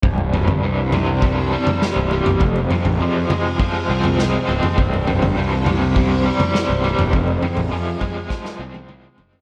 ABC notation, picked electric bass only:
X:1
M:4/4
L:1/16
Q:1/4=102
K:none
V:1 name="Picked electric bass" clef=bass
C,,,3 G,,, C,,8 z C,,,2 C,,, | F,,,2 z _B,,, F,,2 z4 C,,4 _D,,, z | C,,,3 G,,, C,,8 z C,,,2 E,,, | F,,,2 z _B,,, F,,2 z4 C,,4 F,,, z |]